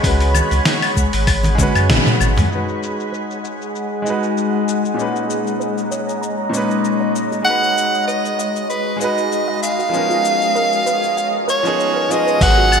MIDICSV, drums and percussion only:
0, 0, Header, 1, 2, 480
1, 0, Start_track
1, 0, Tempo, 618557
1, 29, Time_signature, 4, 2, 24, 8
1, 9933, End_track
2, 0, Start_track
2, 0, Title_t, "Drums"
2, 28, Note_on_c, 9, 36, 110
2, 31, Note_on_c, 9, 46, 68
2, 35, Note_on_c, 9, 82, 41
2, 106, Note_off_c, 9, 36, 0
2, 108, Note_off_c, 9, 46, 0
2, 113, Note_off_c, 9, 82, 0
2, 159, Note_on_c, 9, 46, 31
2, 163, Note_on_c, 9, 82, 28
2, 236, Note_off_c, 9, 46, 0
2, 241, Note_off_c, 9, 82, 0
2, 268, Note_on_c, 9, 75, 80
2, 269, Note_on_c, 9, 64, 76
2, 273, Note_on_c, 9, 82, 73
2, 346, Note_off_c, 9, 75, 0
2, 347, Note_off_c, 9, 64, 0
2, 350, Note_off_c, 9, 82, 0
2, 399, Note_on_c, 9, 46, 31
2, 403, Note_on_c, 9, 82, 31
2, 476, Note_off_c, 9, 46, 0
2, 481, Note_off_c, 9, 82, 0
2, 508, Note_on_c, 9, 38, 100
2, 508, Note_on_c, 9, 46, 68
2, 512, Note_on_c, 9, 82, 41
2, 585, Note_off_c, 9, 38, 0
2, 585, Note_off_c, 9, 46, 0
2, 590, Note_off_c, 9, 82, 0
2, 639, Note_on_c, 9, 46, 47
2, 639, Note_on_c, 9, 75, 83
2, 644, Note_on_c, 9, 82, 31
2, 717, Note_off_c, 9, 46, 0
2, 717, Note_off_c, 9, 75, 0
2, 722, Note_off_c, 9, 82, 0
2, 741, Note_on_c, 9, 63, 70
2, 748, Note_on_c, 9, 36, 57
2, 753, Note_on_c, 9, 82, 72
2, 819, Note_off_c, 9, 63, 0
2, 826, Note_off_c, 9, 36, 0
2, 831, Note_off_c, 9, 82, 0
2, 878, Note_on_c, 9, 46, 46
2, 882, Note_on_c, 9, 82, 29
2, 955, Note_off_c, 9, 46, 0
2, 960, Note_off_c, 9, 82, 0
2, 987, Note_on_c, 9, 46, 69
2, 987, Note_on_c, 9, 75, 76
2, 988, Note_on_c, 9, 36, 108
2, 992, Note_on_c, 9, 82, 43
2, 1065, Note_off_c, 9, 36, 0
2, 1065, Note_off_c, 9, 46, 0
2, 1065, Note_off_c, 9, 75, 0
2, 1069, Note_off_c, 9, 82, 0
2, 1114, Note_on_c, 9, 64, 95
2, 1120, Note_on_c, 9, 46, 29
2, 1125, Note_on_c, 9, 82, 28
2, 1192, Note_off_c, 9, 64, 0
2, 1198, Note_off_c, 9, 46, 0
2, 1202, Note_off_c, 9, 82, 0
2, 1225, Note_on_c, 9, 63, 71
2, 1228, Note_on_c, 9, 36, 93
2, 1230, Note_on_c, 9, 48, 58
2, 1234, Note_on_c, 9, 82, 77
2, 1302, Note_off_c, 9, 63, 0
2, 1305, Note_off_c, 9, 36, 0
2, 1307, Note_off_c, 9, 48, 0
2, 1312, Note_off_c, 9, 82, 0
2, 1362, Note_on_c, 9, 46, 30
2, 1362, Note_on_c, 9, 75, 81
2, 1366, Note_on_c, 9, 82, 28
2, 1439, Note_off_c, 9, 46, 0
2, 1439, Note_off_c, 9, 75, 0
2, 1444, Note_off_c, 9, 82, 0
2, 1471, Note_on_c, 9, 38, 101
2, 1471, Note_on_c, 9, 46, 73
2, 1471, Note_on_c, 9, 47, 78
2, 1476, Note_on_c, 9, 82, 43
2, 1549, Note_off_c, 9, 38, 0
2, 1549, Note_off_c, 9, 46, 0
2, 1549, Note_off_c, 9, 47, 0
2, 1553, Note_off_c, 9, 82, 0
2, 1601, Note_on_c, 9, 46, 30
2, 1601, Note_on_c, 9, 47, 69
2, 1606, Note_on_c, 9, 82, 29
2, 1679, Note_off_c, 9, 46, 0
2, 1679, Note_off_c, 9, 47, 0
2, 1683, Note_off_c, 9, 82, 0
2, 1707, Note_on_c, 9, 63, 64
2, 1711, Note_on_c, 9, 75, 76
2, 1715, Note_on_c, 9, 82, 68
2, 1784, Note_off_c, 9, 63, 0
2, 1788, Note_off_c, 9, 75, 0
2, 1793, Note_off_c, 9, 82, 0
2, 1836, Note_on_c, 9, 64, 84
2, 1839, Note_on_c, 9, 63, 56
2, 1844, Note_on_c, 9, 45, 75
2, 1844, Note_on_c, 9, 46, 30
2, 1848, Note_on_c, 9, 82, 30
2, 1914, Note_off_c, 9, 64, 0
2, 1917, Note_off_c, 9, 63, 0
2, 1921, Note_off_c, 9, 45, 0
2, 1921, Note_off_c, 9, 46, 0
2, 1926, Note_off_c, 9, 82, 0
2, 1956, Note_on_c, 9, 82, 35
2, 2034, Note_off_c, 9, 82, 0
2, 2084, Note_on_c, 9, 82, 24
2, 2162, Note_off_c, 9, 82, 0
2, 2196, Note_on_c, 9, 82, 65
2, 2274, Note_off_c, 9, 82, 0
2, 2327, Note_on_c, 9, 82, 27
2, 2405, Note_off_c, 9, 82, 0
2, 2437, Note_on_c, 9, 82, 38
2, 2514, Note_off_c, 9, 82, 0
2, 2565, Note_on_c, 9, 82, 28
2, 2643, Note_off_c, 9, 82, 0
2, 2674, Note_on_c, 9, 82, 64
2, 2752, Note_off_c, 9, 82, 0
2, 2807, Note_on_c, 9, 82, 27
2, 2884, Note_off_c, 9, 82, 0
2, 2915, Note_on_c, 9, 82, 37
2, 2992, Note_off_c, 9, 82, 0
2, 3152, Note_on_c, 9, 82, 69
2, 3230, Note_off_c, 9, 82, 0
2, 3283, Note_on_c, 9, 82, 26
2, 3361, Note_off_c, 9, 82, 0
2, 3395, Note_on_c, 9, 82, 38
2, 3472, Note_off_c, 9, 82, 0
2, 3634, Note_on_c, 9, 82, 66
2, 3712, Note_off_c, 9, 82, 0
2, 3764, Note_on_c, 9, 82, 26
2, 3842, Note_off_c, 9, 82, 0
2, 3874, Note_on_c, 9, 82, 37
2, 3952, Note_off_c, 9, 82, 0
2, 4003, Note_on_c, 9, 82, 25
2, 4081, Note_off_c, 9, 82, 0
2, 4113, Note_on_c, 9, 82, 68
2, 4191, Note_off_c, 9, 82, 0
2, 4245, Note_on_c, 9, 82, 28
2, 4323, Note_off_c, 9, 82, 0
2, 4354, Note_on_c, 9, 82, 37
2, 4432, Note_off_c, 9, 82, 0
2, 4483, Note_on_c, 9, 82, 27
2, 4561, Note_off_c, 9, 82, 0
2, 4592, Note_on_c, 9, 82, 71
2, 4669, Note_off_c, 9, 82, 0
2, 4725, Note_on_c, 9, 82, 29
2, 4802, Note_off_c, 9, 82, 0
2, 4834, Note_on_c, 9, 82, 39
2, 4911, Note_off_c, 9, 82, 0
2, 5073, Note_on_c, 9, 82, 73
2, 5151, Note_off_c, 9, 82, 0
2, 5204, Note_on_c, 9, 82, 29
2, 5282, Note_off_c, 9, 82, 0
2, 5312, Note_on_c, 9, 82, 40
2, 5389, Note_off_c, 9, 82, 0
2, 5553, Note_on_c, 9, 82, 64
2, 5630, Note_off_c, 9, 82, 0
2, 5682, Note_on_c, 9, 82, 28
2, 5760, Note_off_c, 9, 82, 0
2, 5794, Note_on_c, 9, 82, 40
2, 5872, Note_off_c, 9, 82, 0
2, 5925, Note_on_c, 9, 82, 29
2, 6002, Note_off_c, 9, 82, 0
2, 6035, Note_on_c, 9, 82, 66
2, 6113, Note_off_c, 9, 82, 0
2, 6165, Note_on_c, 9, 82, 31
2, 6243, Note_off_c, 9, 82, 0
2, 6274, Note_on_c, 9, 82, 41
2, 6351, Note_off_c, 9, 82, 0
2, 6404, Note_on_c, 9, 82, 31
2, 6481, Note_off_c, 9, 82, 0
2, 6513, Note_on_c, 9, 82, 73
2, 6590, Note_off_c, 9, 82, 0
2, 6642, Note_on_c, 9, 82, 31
2, 6720, Note_off_c, 9, 82, 0
2, 6751, Note_on_c, 9, 82, 40
2, 6829, Note_off_c, 9, 82, 0
2, 6990, Note_on_c, 9, 82, 73
2, 7068, Note_off_c, 9, 82, 0
2, 7122, Note_on_c, 9, 82, 31
2, 7200, Note_off_c, 9, 82, 0
2, 7233, Note_on_c, 9, 82, 42
2, 7311, Note_off_c, 9, 82, 0
2, 7473, Note_on_c, 9, 82, 74
2, 7551, Note_off_c, 9, 82, 0
2, 7602, Note_on_c, 9, 82, 28
2, 7680, Note_off_c, 9, 82, 0
2, 7712, Note_on_c, 9, 82, 40
2, 7790, Note_off_c, 9, 82, 0
2, 7842, Note_on_c, 9, 82, 28
2, 7920, Note_off_c, 9, 82, 0
2, 7952, Note_on_c, 9, 82, 69
2, 8030, Note_off_c, 9, 82, 0
2, 8083, Note_on_c, 9, 82, 31
2, 8160, Note_off_c, 9, 82, 0
2, 8193, Note_on_c, 9, 82, 41
2, 8271, Note_off_c, 9, 82, 0
2, 8322, Note_on_c, 9, 82, 28
2, 8400, Note_off_c, 9, 82, 0
2, 8432, Note_on_c, 9, 82, 70
2, 8510, Note_off_c, 9, 82, 0
2, 8563, Note_on_c, 9, 82, 28
2, 8640, Note_off_c, 9, 82, 0
2, 8673, Note_on_c, 9, 82, 43
2, 8751, Note_off_c, 9, 82, 0
2, 8914, Note_on_c, 9, 82, 73
2, 8992, Note_off_c, 9, 82, 0
2, 9044, Note_on_c, 9, 82, 31
2, 9121, Note_off_c, 9, 82, 0
2, 9157, Note_on_c, 9, 82, 40
2, 9235, Note_off_c, 9, 82, 0
2, 9397, Note_on_c, 9, 82, 72
2, 9475, Note_off_c, 9, 82, 0
2, 9527, Note_on_c, 9, 82, 29
2, 9604, Note_off_c, 9, 82, 0
2, 9630, Note_on_c, 9, 36, 120
2, 9633, Note_on_c, 9, 46, 67
2, 9633, Note_on_c, 9, 49, 100
2, 9637, Note_on_c, 9, 82, 42
2, 9707, Note_off_c, 9, 36, 0
2, 9710, Note_off_c, 9, 46, 0
2, 9710, Note_off_c, 9, 49, 0
2, 9715, Note_off_c, 9, 82, 0
2, 9871, Note_on_c, 9, 75, 74
2, 9876, Note_on_c, 9, 82, 79
2, 9933, Note_off_c, 9, 75, 0
2, 9933, Note_off_c, 9, 82, 0
2, 9933, End_track
0, 0, End_of_file